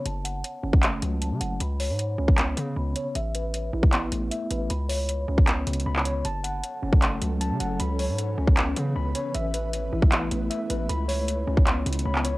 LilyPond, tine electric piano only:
\new Staff \with { instrumentName = "Tine electric piano" } { \time 4/4 \key cis \minor \tempo 4 = 155 a''8 fis''4 cis'8 a8 fis8 a''8 fis''8 | b''8 cis''4 cis'8 b8 cis8 b''8 cis''8 | e''8 b'4 e'8 b8 a8 e''8 b'8 | b''8 cis''4 cis'8 b8 cis8 b''8 cis''8 |
a''8 fis''4 cis'8 a8 fis8 a''8 fis''8 | b''8 cis''4 cis'8 b8 cis8 b''8 cis''8 | e''8 b'4 e'8 b8 a8 e''8 b'8 | b''8 cis''4 cis'8 b8 cis8 b''8 cis''8 | }